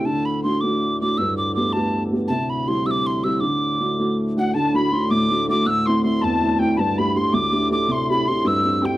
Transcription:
0.05 4.53 D2 medium
0.05 4.54 A2 medium
0.05 1.15 D3 medium
0.05 0.27 A5 medium
0.25 0.43 B5 medium
0.43 0.62 A3 soft
0.43 0.62 D4 soft
0.43 0.62 F#4 soft
0.43 0.62 C6 medium
0.61 0.99 A3 soft
0.61 1.00 D4 soft
0.61 1.00 F#4 medium
0.61 0.99 D6 medium
1.01 1.18 A3 soft
1.01 1.18 D4 soft
1.01 1.19 F#4 medium
1.01 1.19 D6 medium
1.18 2.27 G2 medium
1.18 1.37 E6 loud
1.37 1.54 D6 medium
1.55 1.73 A3 soft
1.55 1.74 B3 soft
1.55 1.74 G4 soft
1.55 1.74 D6 medium
1.73 2.10 A3 soft
1.73 2.10 B3 soft
1.73 2.11 G4 soft
1.73 2.03 A5 medium
2.12 2.29 A3 soft
2.12 2.30 B3 soft
2.12 2.30 G4 medium
2.28 3.39 C3 medium
2.28 2.51 A5 medium
2.50 2.69 B5 medium
2.67 2.83 G3 soft
2.67 2.84 C4 soft
2.67 2.85 E4 soft
2.67 2.88 C6 medium
2.85 3.22 G3 soft
2.85 3.23 C4 soft
2.85 3.23 E4 medium
2.85 2.92 E6 medium
2.91 3.08 D6 medium
3.06 3.25 C6 medium
3.24 3.42 G3 soft
3.24 3.42 C4 soft
3.24 3.42 E4 medium
3.24 3.42 E6 medium
3.40 4.51 D3 medium
3.40 4.17 D6 medium
3.80 3.97 A3 soft
3.80 3.97 D4 soft
3.80 3.98 F#4 soft
3.99 4.35 A3 soft
3.99 4.35 D4 soft
3.99 4.35 F#4 medium
4.36 4.54 A3 soft
4.36 4.54 D4 soft
4.36 4.54 F#4 soft
4.36 4.55 F#5 medium
4.36 4.54 F#5 medium
4.54 8.98 D2 medium
4.54 8.98 A2 medium
4.54 4.92 D3 medium
4.54 4.73 A5 medium
4.54 4.77 A5 loud
4.74 4.89 A3 soft
4.74 4.89 D4 soft
4.74 4.90 F#4 medium
4.74 5.08 B5 medium
4.74 4.94 B5 medium
4.91 5.22 A3 soft
4.91 5.12 C6 loud
5.09 5.47 A2 medium
5.09 5.45 D6 medium
5.09 5.49 D6 medium
5.30 5.47 A3 soft
5.30 5.47 D4 soft
5.30 5.48 F#4 soft
5.48 5.63 A3 soft
5.48 5.63 D4 soft
5.48 5.63 F#4 medium
5.48 5.67 D6 medium
5.48 5.69 D6 medium
5.66 6.03 A2 medium
5.66 5.89 E6 loud
5.66 5.71 F#6 medium
5.70 5.87 E6 medium
5.86 6.02 A3 medium
5.86 6.03 C4 soft
5.86 6.03 E4 medium
5.86 6.02 C6 medium
5.86 6.04 C6 medium
6.03 6.34 A3 soft
6.03 6.35 C4 soft
6.03 6.35 E4 soft
6.03 6.23 C6 medium
6.03 6.26 C6 loud
6.21 6.59 E2 medium
6.21 6.60 A5 medium
6.21 6.60 A5 loud
6.41 6.57 A3 soft
6.41 6.58 C4 soft
6.41 6.58 E4 soft
6.59 6.74 A3 soft
6.59 6.74 C4 soft
6.59 6.74 E4 medium
6.59 6.75 G5 medium
6.59 6.79 G5 medium
6.76 7.15 G2 medium
6.76 7.00 A5 medium
6.76 6.99 A5 medium
6.76 6.80 B5 medium
6.98 7.14 A3 medium
6.98 7.14 D4 soft
6.98 7.15 G4 medium
6.98 7.14 B5 medium
6.98 7.19 B5 medium
7.15 7.46 A3 soft
7.15 7.46 D4 soft
7.15 7.46 G4 soft
7.15 7.34 C6 medium
7.15 7.36 C6 medium
7.32 7.70 D2 medium
7.32 7.71 D6 medium
7.32 7.72 D6 loud
7.52 7.69 A3 soft
7.52 7.70 D4 soft
7.52 7.69 G4 medium
7.70 7.85 A3 soft
7.70 7.86 D4 soft
7.70 7.86 G4 medium
7.70 7.89 D6 medium
7.70 7.93 D6 medium
7.88 8.26 C3 medium
7.88 8.10 C6 medium
7.88 7.94 D6 medium
7.93 8.11 C6 medium
8.09 8.26 C4 soft
8.09 8.26 E4 soft
8.09 8.26 G4 medium
8.09 8.29 B5 medium
8.27 8.58 C4 soft
8.27 8.58 E4 soft
8.27 8.58 G4 soft
8.27 8.47 C6 medium
8.27 8.49 C6 loud
8.45 8.82 G2 medium
8.45 8.83 E6 medium
8.45 8.87 E6 loud
8.64 8.81 C4 soft
8.64 8.81 E4 soft
8.64 8.81 G4 soft
8.81 8.97 C4 medium
8.81 8.97 E4 soft
8.81 8.98 G4 medium
8.81 8.98 G5 medium

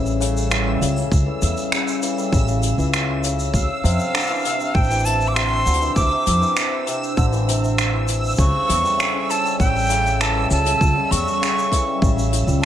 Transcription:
0.00 0.77 A1 medium
0.00 0.19 C#3 medium
0.00 0.26 E3 medium
0.00 3.50 G3 medium
0.00 3.50 C#4 medium
0.00 3.50 A4 medium
0.00 8.35 F5 medium
0.00 12.65 E6 medium
0.06 shaker soft
0.20 0.80 C#3 loud
0.20 closed hi-hat medium
0.20 shaker medium
0.37 shaker medium
0.51 0.86 E3 medium
0.51 finger snap medium
0.51 shaker medium
0.66 0.86 G3 medium
0.81 1.06 C#2 medium
0.81 0.95 C#3 medium
0.81 closed hi-hat medium
0.81 shaker medium
0.97 1.71 C#3 medium
0.97 shaker medium
1.11 1.24 C#2 medium
1.11 kick medium
1.11 shaker medium
1.26 1.77 E3 medium
1.42 1.54 E2 medium
1.42 closed hi-hat medium
1.42 shaker medium
1.57 shaker medium
1.72 2.32 C#3 medium
1.72 finger snap medium
1.72 shaker medium
1.88 shaker soft
2.02 2.38 E3 medium
2.02 closed hi-hat medium
2.02 shaker medium
2.18 2.38 G3 medium
2.18 shaker soft
2.32 2.73 A1 medium
2.32 2.47 C#3 medium
2.32 kick loud
2.32 shaker medium
2.48 3.22 C#3 medium
2.48 shaker medium
2.63 closed hi-hat medium
2.63 shaker medium
2.78 3.49 C#2 medium
2.78 3.29 E3 medium
2.78 shaker soft
2.94 finger snap medium
2.94 shaker medium
3.23 3.59 C#3 medium
3.23 closed hi-hat loud
3.23 shaker medium
3.39 shaker medium
3.53 3.66 D2 medium
3.53 8.35 D4 medium
3.53 8.35 C5 medium
3.53 4.76 F5 medium
3.53 kick medium
3.53 shaker medium
3.84 3.96 F2 medium
3.84 4.19 C3 loud
3.84 closed hi-hat medium
3.84 shaker medium
4.00 shaker soft
4.14 4.50 D3 medium
4.14 finger snap medium
4.14 shaker medium
4.20 shaker soft
4.23 shaker soft
4.27 4.50 E3 medium
4.27 shaker soft
4.30 shaker soft
4.35 shaker soft
4.39 shaker soft
4.42 4.59 C3 medium
4.42 closed hi-hat medium
4.42 shaker soft
4.45 shaker medium
4.60 5.34 C3 medium
4.60 shaker soft
4.75 5.61 A1 medium
4.75 5.07 G5 medium
4.75 kick loud
4.75 shaker soft
4.84 shaker soft
4.91 5.41 E3 medium
4.91 shaker soft
4.99 shaker soft
5.05 5.29 A5 loud
5.05 closed hi-hat medium
5.05 shaker medium
5.21 shaker soft
5.28 5.36 D6 medium
5.34 5.71 C3 medium
5.34 5.96 C6 loud
5.34 finger snap medium
5.34 shaker soft
5.66 5.91 D2 medium
5.66 6.01 D3 medium
5.66 shaker medium
5.74 closed hi-hat medium
5.81 6.01 E3 medium
5.81 shaker medium
5.96 6.09 D2 medium
5.96 6.10 C3 medium
5.96 6.83 D6 loud
5.96 kick loud
5.96 shaker medium
6.11 6.86 C3 medium
6.27 6.39 F2 medium
6.27 closed hi-hat medium
6.27 shaker medium
6.41 6.92 E3 medium
6.41 shaker soft
6.57 finger snap medium
6.57 shaker medium
6.87 7.22 C3 loud
6.87 closed hi-hat medium
6.87 shaker medium
7.03 shaker soft
7.17 8.34 A1 medium
7.17 7.53 D3 medium
7.17 kick loud
7.17 shaker soft
7.32 7.53 E3 medium
7.32 shaker soft
7.48 7.61 C3 medium
7.48 closed hi-hat medium
7.48 shaker medium
7.63 8.44 C3 medium
7.63 shaker soft
7.78 finger snap medium
7.78 shaker medium
7.93 8.44 E3 medium
8.08 closed hi-hat medium
8.08 shaker medium
8.24 shaker soft
8.26 shaker soft
8.28 shaker soft
8.31 shaker soft
8.34 shaker soft
8.36 8.51 C#2 medium
8.36 8.97 C#3 loud
8.36 12.65 E5 medium
8.36 kick medium
8.36 shaker soft
8.39 12.65 G3 medium
8.39 12.65 C#4 medium
8.39 12.65 A4 medium
8.39 9.32 C#6 loud
8.39 shaker medium
8.68 8.81 E2 medium
8.68 9.04 E3 medium
8.68 closed hi-hat loud
8.68 shaker medium
8.83 9.04 G3 medium
8.83 shaker soft
8.98 9.12 C#3 medium
8.98 finger snap medium
8.98 shaker medium
9.13 9.88 C#3 medium
9.30 9.59 A5 medium
9.30 closed hi-hat medium
9.30 shaker medium
9.44 9.95 G3 medium
9.44 shaker soft
9.60 10.46 A1 medium
9.60 10.23 G5 loud
9.60 kick loud
9.60 shaker medium
9.76 shaker soft
9.78 shaker soft
9.81 shaker soft
9.83 shaker soft
9.86 shaker soft
9.88 10.49 C#3 loud
9.88 closed hi-hat medium
9.88 shaker soft
9.90 shaker medium
10.06 shaker soft
10.20 10.56 E3 medium
10.20 10.51 A5 medium
10.20 finger snap medium
10.20 shaker medium
10.35 10.56 G3 medium
10.51 10.75 C#2 medium
10.51 10.64 C#3 medium
10.51 11.13 A5 loud
10.51 shaker medium
10.66 11.40 C#3 medium
10.66 closed hi-hat loud
10.66 shaker soft
10.81 10.93 C#2 medium
10.81 kick medium
10.81 shaker medium
10.96 11.47 G3 medium
11.11 11.24 E2 medium
11.11 12.32 C#6 loud
11.11 closed hi-hat loud
11.11 shaker medium
11.28 shaker soft
11.41 12.00 C#3 medium
11.41 finger snap medium
11.41 shaker medium
11.59 shaker soft
11.72 12.07 E3 medium
11.72 kick medium
11.72 closed hi-hat loud
11.72 shaker medium
11.87 12.07 G3 medium
12.02 12.43 A1 medium
12.02 12.15 C#3 medium
12.02 kick loud
12.02 shaker medium
12.16 12.65 C#3 medium
12.16 shaker medium
12.33 closed hi-hat loud
12.33 shaker medium
12.47 12.63 C#2 medium
12.47 12.65 G3 medium
12.47 shaker soft
12.61 12.65 A5 medium

